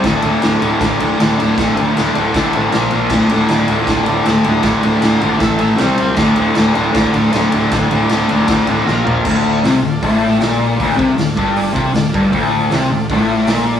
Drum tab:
CC |--------|--------|x-------|--------|
RD |xxxxxxxx|xxxxxxxx|-xxxxxxx|xxxxxxxx|
HH |--------|--------|--------|--------|
SD |o-o-o-o-|o-o-o-o-|o-o-o-o-|o-o-o-o-|
FT |--------|--------|--------|--------|
BD |o---o---|o---o---|o---o---|o---o---|

CC |--------|--------|x-------|--------|
RD |xxxxxxxx|xxxxxx--|--------|--------|
HH |--------|--------|--o-o-o-|o-o-o-o-|
SD |o-o-o-o-|o-o-o-o-|--o---o-|--o---o-|
FT |--------|-------o|--------|--------|
BD |o---o---|o---o---|o---o---|oo-o-o-o|

CC |--------|
RD |--------|
HH |o-o-o-o-|
SD |--o---o-|
FT |--------|
BD |o---o---|